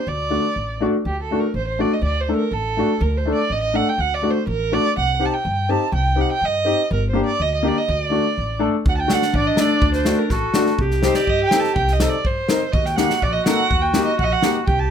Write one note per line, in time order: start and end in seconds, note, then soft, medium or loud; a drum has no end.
0.07 0.36 D2 medium
0.07 0.81 D5 medium
0.30 0.43 A3 medium
0.30 0.43 D4 medium
0.30 0.43 F#4 medium
0.56 0.85 A1 medium
0.80 0.93 A3 medium
0.80 0.93 D4 medium
0.80 0.93 F#4 medium
1.05 1.34 D2 medium
1.05 1.21 G4 medium
1.23 1.42 A4 medium
1.31 1.42 A3 medium
1.31 1.43 D4 medium
1.31 1.43 F#4 medium
1.40 1.55 A#4 medium
1.54 1.83 A1 medium
1.54 1.66 C5 medium
1.68 1.82 C5 medium
1.79 1.91 A3 medium
1.79 1.91 D4 medium
1.79 1.91 F#4 medium
1.79 1.95 D5 medium
1.93 2.04 D#5 medium
2.02 2.31 D2 medium
2.02 2.22 D5 medium
2.21 2.36 C5 medium
2.29 2.40 A3 medium
2.29 2.40 D4 soft
2.29 2.40 A4 medium
2.36 2.54 A#4 medium
2.51 2.81 A1 medium
2.51 3.03 A4 medium
2.77 2.89 A3 medium
2.77 2.89 D4 medium
2.77 2.90 F#4 medium
3.01 3.30 D2 loud
3.01 3.19 A#4 medium
3.17 3.33 C5 medium
3.25 3.37 A3 medium
3.25 3.38 D4 medium
3.25 3.38 A4 medium
3.35 3.54 D5 medium
3.50 3.79 A1 medium
3.50 3.62 D#5 medium
3.63 3.77 D#5 medium
3.74 3.86 A3 medium
3.74 3.86 D4 medium
3.74 3.87 A4 medium
3.74 3.90 F#5 medium
3.89 4.02 G5 medium
3.98 4.28 D2 medium
3.98 4.16 F#5 medium
4.14 4.32 D5 medium
4.22 4.35 A3 medium
4.22 4.35 D4 soft
4.22 4.35 F#4 medium
4.31 4.47 C5 medium
4.47 4.76 A1 medium
4.47 4.75 A#4 medium
4.72 4.84 A3 medium
4.72 4.84 D4 medium
4.72 4.84 F#4 medium
4.72 4.97 D5 loud
4.97 5.26 C2 medium
4.97 5.27 F#5 medium
5.19 5.32 C4 medium
5.19 5.32 D#4 soft
5.19 5.33 G4 medium
5.26 5.35 A5 medium
5.33 5.71 G5 medium
5.45 5.74 G2 medium
5.69 5.81 C4 medium
5.69 5.82 D#4 medium
5.69 5.82 G4 medium
5.69 5.94 A5 medium
5.92 6.22 C2 medium
5.92 6.22 G5 medium
6.16 6.29 C4 medium
6.16 6.29 D#4 medium
6.16 6.30 G4 medium
6.21 6.32 F#5 medium
6.32 6.47 G5 medium
6.41 6.71 G2 medium
6.41 6.93 D#5 medium
6.65 6.78 C4 medium
6.65 6.79 D#4 medium
6.65 6.79 G4 medium
6.91 7.20 G1 medium
6.91 7.08 A#4 medium
7.10 7.27 A#3 medium
7.10 7.24 C5 medium
7.15 7.27 D4 medium
7.15 7.28 G4 medium
7.26 7.44 D5 medium
7.40 7.69 D2 medium
7.40 7.53 D#5 medium
7.55 7.70 D#5 medium
7.63 7.76 A#3 medium
7.63 7.76 D4 medium
7.63 7.77 G4 medium
7.68 7.79 D5 medium
7.78 7.92 D#5 medium
7.88 8.18 D2 loud
7.88 8.63 D5 medium
8.10 8.24 A3 medium
8.10 8.24 D4 medium
8.10 8.24 F#4 medium
8.38 8.67 A1 medium
8.59 8.73 A3 medium
8.59 8.73 D4 medium
8.59 8.73 A4 medium
8.85 9.15 D2 loud
8.85 10.32 D4 medium
8.85 8.96 F#5 medium
8.85 kick medium
8.96 9.14 G5 medium
8.96 9.02 A5 medium
9.07 9.21 A3 medium
9.07 9.21 D4 soft
9.07 9.21 F#4 medium
9.07 snare medium
9.13 9.36 F#5 medium
9.22 snare soft
9.33 9.48 A1 medium
9.33 9.48 D5 medium
9.33 kick medium
9.47 9.62 D#5 medium
9.55 9.69 A3 medium
9.55 9.70 D4 medium
9.55 9.70 A4 medium
9.55 snare medium
9.60 9.94 D5 loud
9.81 10.11 D2 loud
9.81 kick medium
9.93 10.20 C5 medium
9.93 snare soft
10.05 10.19 A3 medium
10.05 10.19 D4 medium
10.05 10.19 F#4 medium
10.05 snare medium
10.18 10.33 A#4 medium
10.30 10.45 A1 medium
10.30 10.80 F#4 medium
10.30 10.68 A4 medium
10.30 kick medium
10.30 snare soft
10.54 10.67 A3 medium
10.54 10.67 D4 medium
10.54 10.67 F#4 medium
10.54 snare medium
10.66 snare soft
10.78 11.08 C2 medium
10.78 12.46 G4 loud
10.78 kick medium
10.91 snare soft
11.02 11.15 C4 medium
11.02 11.16 D#4 medium
11.02 11.16 G4 medium
11.02 11.16 C5 medium
11.02 snare medium
11.14 11.31 D5 medium
11.14 snare medium
11.27 11.42 G2 medium
11.27 11.44 D#5 loud
11.27 kick medium
11.44 11.61 G5 medium
11.51 11.64 C4 medium
11.51 11.65 D#4 medium
11.51 11.65 A4 medium
11.51 snare medium
11.60 11.75 A5 loud
11.60 snare soft
11.76 12.05 C2 medium
11.76 11.94 G5 medium
11.76 kick medium
11.88 snare soft
11.93 12.11 D#5 medium
12.00 12.12 C4 medium
12.00 12.13 D#4 medium
12.00 12.13 A4 medium
12.00 snare medium
12.09 12.28 D5 medium
12.25 12.39 G2 medium
12.25 12.74 C5 medium
12.25 kick medium
12.48 12.61 C4 medium
12.48 12.61 D#4 medium
12.48 12.62 A#4 medium
12.48 snare medium
12.72 13.03 D#2 loud
12.72 14.63 F#4 medium
12.72 12.87 D#5 medium
12.72 kick medium
12.86 12.97 G5 medium
12.86 snare soft
12.96 13.10 A#3 medium
12.96 13.10 D#4 medium
12.96 13.10 G4 medium
12.96 13.24 F#5 medium
12.96 snare medium
13.10 snare medium
13.22 13.37 A#1 medium
13.22 13.34 D5 medium
13.22 kick medium
13.33 13.46 D#5 medium
13.46 13.59 A#3 medium
13.46 13.59 D#4 medium
13.46 13.59 A4 medium
13.46 13.83 F#5 loud
13.46 snare medium
13.71 14.00 D#2 medium
13.71 kick medium
13.82 14.04 G5 medium
13.94 14.06 A#3 medium
13.94 14.07 D#4 medium
13.94 14.07 G4 medium
13.94 snare medium
14.05 14.17 D#5 medium
14.19 14.33 A#1 medium
14.19 14.26 F#5 medium
14.19 kick medium
14.24 14.34 D#5 medium
14.32 14.55 F#5 medium
14.42 14.55 A#3 medium
14.42 14.55 D#4 medium
14.42 14.55 G4 medium
14.42 snare medium
14.66 14.90 C2 medium
14.66 14.90 G4 loud
14.66 14.81 G5 medium
14.66 kick medium
14.79 14.90 A5 medium